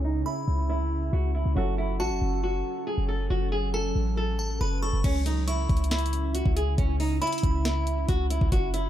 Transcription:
Already playing: C#2 C#3 C#4 E4 G#4
0.04 D#4
0.26 E4 B5
0.48 C#2
0.69 E4
1.13 C#2 F#4
1.35 E4
1.46 C#2
1.55 F#1 F#3 C#4 F#4 A4
1.78 E4
2.00 A1 F#4 A5
2.11 F#1
2.22 F#1
2.43 F#4
2.87 G#4
2.98 F#1
3.08 A4
3.30 F#1 F#4
3.52 G#4
3.74 A4 G#5
3.96 A1
4.17 A4
4.39 G#1 A5
4.50 A1
4.61 F#1 B4 B5
4.82 A4 C#6
4.93 F#1
5.04 C#2 C#3 C#4 E4, kick, closed hi-hat, crash
5.26 D#4, closed hi-hat
5.48 E4 C#6, closed hi-hat
5.69 C#2, kick, closed hi-hat
5.77 closed hi-hat
5.84 closed hi-hat
5.91 E4, snare, closed hi-hat
5.98 closed hi-hat
6.06 closed hi-hat
6.13 closed hi-hat
6.35 F#4, closed hi-hat
6.46 C#2, kick
6.56 G#4, closed hi-hat
6.78 C#2 C#4, kick, closed hi-hat
7.00 D#4, open hi-hat
7.22 E4 B5, closed hi-hat
7.27 closed hi-hat
7.33 closed hi-hat
7.38 closed hi-hat
7.43 C#2, kick, closed hi-hat
7.65 E4, snare, closed hi-hat
7.87 closed hi-hat
8.09 C#2 F#4, kick, closed hi-hat
8.30 E4, closed hi-hat
8.41 C#2, kick
8.52 F#1 F#4, kick, closed hi-hat
8.74 E4, closed hi-hat

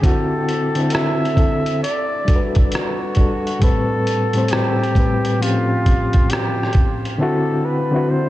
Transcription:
0.01 D3 C4 E4 A4, kick, closed hi-hat
0.06 F#4
0.49 closed hi-hat
0.75 D3 C4 E4, closed hi-hat
0.80 A4
0.90 E5, closed hi-hat
0.95 cross-stick
1.25 closed hi-hat
1.35 D3 C4 E4, kick, closed hi-hat
1.39 A4
1.66 closed hi-hat
1.83 D5, closed hi-hat
2.25 G3 D4 F#4, kick, closed hi-hat
2.29 A4
2.35 B4
2.55 kick, closed hi-hat
2.72 F#4, cross-stick, closed hi-hat
3.15 G3 D4, kick, closed hi-hat
3.19 F#4 A4
3.47 closed hi-hat
3.59 A2 G3 C4 A4, kick, closed hi-hat
3.64 B4
4.07 closed hi-hat
4.33 A2 G3 C4, closed hi-hat
4.38 C5
4.48 G4, closed hi-hat
4.53 cross-stick
4.83 closed hi-hat
4.95 A2 G3 C4, kick, closed hi-hat
4.99 B4
5.25 closed hi-hat
5.39 A2 F3 C4 C#4 F4, closed hi-hat
5.44 G4
5.86 kick, closed hi-hat
6.13 kick, closed hi-hat
6.30 G4, cross-stick, closed hi-hat
6.63 cross-stick
6.73 kick, closed hi-hat
7.05 closed hi-hat
7.18 D3 C4 E4 A4
7.23 F#4
7.65 B4
7.91 D3 C4 E4
7.96 F#4
8.10 C5

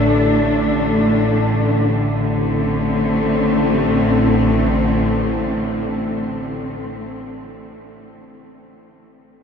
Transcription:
Already playing: A1 A2 D3 A3 D4 A4
1.92 A1 A2 D3
2.11 A3
2.29 C4

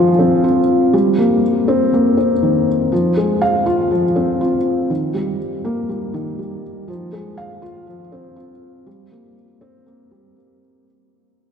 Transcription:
Already playing: F3 G#3 F4 F5
0.19 C4
0.44 F4
0.93 G3
1.18 A#3
1.68 C4
1.93 A#3
2.17 C4
2.43 D#3
2.92 F3
3.17 G#3
3.42 F5
3.66 F4
3.91 F3
4.16 C4
4.41 F4
4.90 D#3
5.14 G3
5.65 A#3
5.89 G3
6.14 D#3
6.39 G3
6.88 F3
7.13 G#3
7.37 F5
7.62 F4
7.87 F3
8.12 C4
8.36 F4
8.86 G3
9.11 A#3
9.61 C4
9.86 A#3
10.11 G3
10.36 A#3

